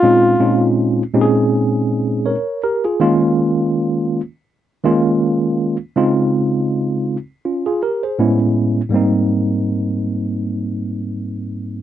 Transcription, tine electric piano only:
0.03 0.34 A#2 medium
0.03 0.34 G#3 medium
0.03 0.34 C4 medium
0.03 0.34 C#4 medium
0.03 0.34 D#4 medium
0.03 0.35 F4 medium
0.39 1.02 A#2 medium
0.39 1.02 G#3 medium
0.39 1.02 C4 medium
0.39 1.02 C#4 medium
0.39 1.02 D#4 medium
0.39 1.02 F4 medium
1.14 2.34 A#2 medium
1.14 2.34 G#3 medium
1.14 2.34 C4 medium
1.14 2.34 C#4 medium
1.14 2.35 D#4 medium
1.14 1.22 G4 medium
1.21 2.29 G#4 medium
2.26 2.61 A#4 soft
2.26 2.61 C#5 medium
2.63 2.83 G4 medium
2.63 2.83 A#4 medium
2.85 3.00 F4 medium
2.85 3.19 G#4 medium
3.00 4.20 D#3 medium
3.00 4.20 G#3 medium
3.00 4.20 A#3 medium
3.00 4.20 C#4 medium
3.00 4.20 F4 loud
4.84 5.76 D#3 medium
4.84 5.76 G#3 medium
4.84 5.76 A#3 medium
4.84 5.76 C#4 medium
4.84 5.77 F4 loud
5.96 7.16 C#3 medium
5.96 7.16 G#3 medium
5.96 7.16 C4 medium
5.96 7.17 D#4 medium
5.96 7.17 F4 loud
7.45 7.65 C#4 soft
7.45 7.65 F4 medium
7.66 7.81 F4 medium
7.66 7.81 G#4 medium
7.83 8.02 G4 medium
7.83 8.02 A#4 medium
8.03 8.38 G#4 soft
8.03 8.38 C5 medium
8.19 8.80 A2 medium
8.19 8.80 G#3 medium
8.19 8.80 B3 medium
8.19 8.81 C#4 medium
8.19 8.81 E4 medium
8.89 11.82 G#2 medium
8.89 11.82 G3 medium
8.89 11.82 A#3 medium
8.94 11.82 C4 medium
8.94 11.82 D#4 medium

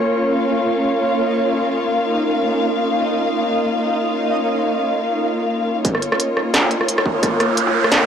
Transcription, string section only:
0.00 5.80 A#3 medium
0.00 5.80 F4 medium
0.00 5.80 A#4 medium
0.00 0.31 C#5 medium
0.33 5.83 F5 medium
5.84 8.06 A#3 medium
5.84 8.06 F4 medium
5.84 8.06 A#4 medium
5.84 8.06 C#5 medium

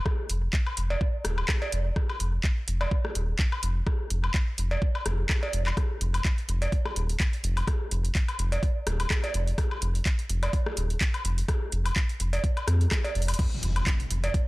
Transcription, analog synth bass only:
0.30 0.48 F1 loud
0.77 0.96 F1 medium
1.25 1.43 D#1 loud
1.72 1.91 F1 loud
2.20 2.39 F1 medium
2.68 2.86 F1 medium
3.15 3.34 D#1 loud
3.63 3.81 F1 loud
4.10 4.29 F1 loud
4.58 4.77 F1 medium
5.06 5.24 F1 medium
5.53 5.72 F1 medium
6.01 6.19 F1 loud
6.48 6.67 F1 medium
6.96 7.15 D#1 loud
7.44 7.62 F1 loud
7.91 8.10 F1 loud
8.39 8.58 F1 medium
8.87 9.05 D#1 loud
9.34 9.53 F1 loud
9.82 10.00 F1 loud
10.29 10.48 F1 medium
10.77 10.96 D#1 loud
11.25 11.43 F1 loud
11.72 11.91 F1 loud
12.20 12.39 F1 medium
12.67 12.86 F2 medium
13.15 13.34 F1 loud
13.63 13.81 F1 loud
14.10 14.29 F1 medium

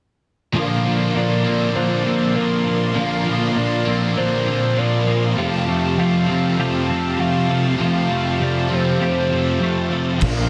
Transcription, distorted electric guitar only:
0.53 1.14 A#2 medium
0.53 0.87 F3 medium
0.53 0.84 A#3 loud
0.85 1.16 F3 medium
0.85 1.17 A#3 medium
1.15 1.75 A#2 medium
1.15 1.48 F3 medium
1.15 1.45 A#3 medium
1.46 1.77 F3 medium
1.46 1.78 A#3 medium
1.75 2.35 A#2 loud
1.75 2.09 F3 loud
1.75 2.05 A#3 loud
2.06 2.37 F3 medium
2.06 2.38 A#3 medium
2.36 2.94 A#2 medium
2.36 2.69 F3 medium
2.36 2.65 A#3 medium
2.66 2.96 F3 medium
2.66 2.97 A#3 medium
2.95 3.55 A#2 medium
2.95 3.29 F3 medium
2.95 3.25 A#3 medium
3.26 3.58 F3 medium
3.26 3.58 A#3 medium
3.56 4.16 A#2 medium
3.56 3.90 F3 medium
3.56 3.86 A#3 medium
3.87 4.18 F3 medium
3.87 4.18 A#3 medium
4.17 4.75 A#2 loud
4.17 4.49 F3 loud
4.17 4.45 A#3 loud
4.47 4.78 F3 medium
4.47 4.79 A#3 medium
4.77 5.36 A#2 medium
4.77 5.09 F3 medium
4.77 5.05 A#3 medium
5.06 5.38 F3 medium
5.06 5.36 A#3 medium
5.35 5.97 F2 medium
5.35 5.69 C3 medium
5.35 5.66 F3 medium
5.67 5.98 C3 medium
5.67 6.00 F3 medium
5.97 6.57 F2 medium
5.97 6.30 C3 medium
5.97 6.28 F3 medium
6.28 6.58 C3 medium
6.28 6.60 F3 medium
6.57 7.16 F2 loud
6.57 6.91 C3 medium
6.57 6.88 F3 loud
6.89 7.18 C3 medium
6.89 7.20 F3 medium
7.18 7.77 F2 medium
7.18 7.50 C3 medium
7.18 7.48 F3 medium
7.48 7.78 C3 medium
7.48 7.81 F3 medium
7.78 8.37 F2 medium
7.78 8.11 C3 medium
7.78 8.08 F3 medium
8.09 8.39 C3 medium
8.09 8.41 F3 medium
8.38 8.97 F2 medium
8.38 8.71 C3 medium
8.38 8.69 F3 medium
8.69 8.98 C3 medium
8.69 9.01 F3 medium
8.98 9.59 F2 medium
8.98 9.31 C3 loud
8.98 9.29 F3 loud
9.29 9.61 C3 medium
9.29 9.63 F3 medium
9.60 10.19 F2 medium
9.60 9.92 C3 medium
9.60 9.89 F3 medium
9.90 10.20 C3 medium
9.90 10.22 F3 medium
10.21 10.49 A#2 medium
10.21 10.49 F3 medium
10.21 10.49 A#3 medium

